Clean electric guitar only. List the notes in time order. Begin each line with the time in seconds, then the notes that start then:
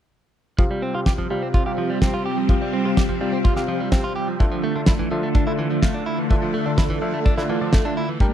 0.59 F3
0.71 G3
0.82 C4
0.95 F4
1.06 G4
1.18 F3
1.30 G3
1.42 C4
1.54 F4
1.66 G4
1.78 F3
1.90 G3
2.02 C4
2.14 F4
2.26 G4
2.37 F3
2.49 F3
2.61 G3
2.73 C4
2.85 F4
2.97 G4
3.09 F3
3.21 G3
3.33 C4
3.44 F4
3.56 G4
3.68 F3
3.80 G3
3.92 C4
4.04 F4
4.16 G4
4.28 F3
4.40 E3
4.52 F3
4.63 A3
4.76 D4
4.88 E4
4.99 E3
5.11 F3
5.23 A3
5.35 D4
5.47 E4
5.59 E3
5.71 F3
5.82 A3
5.94 D4
6.06 E4
6.18 E3
6.30 E3
6.42 F3
6.54 A3
6.66 D4
6.78 E4
6.90 E3
7.02 F3
7.13 A3
7.25 D4
7.37 E4
7.49 E3
7.61 F3
7.73 A3
7.85 D4
7.97 E4
8.09 E3
8.21 G3